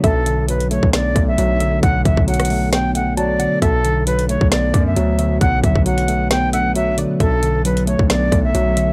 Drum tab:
HH |x---x---x-x-x---x---x---x---x---|x---x---xxxxo---x---x---x---x---|x---x---x-x-x---x---x---x---x---|x---x---x-x-x---x---x---x---x---|
SD |----------------o---------------|----------r-----o---------------|----------------o---------------|----------------o---------------|
BD |o-------------o-----o-----------|o---o-o-------------------------|o-------------o-----o-----------|o---o-o-------------------------|

HH |x---x---x-x-x---x---x---x---x---|
SD |----------------o---------------|
BD |o-------------o-----o-----------|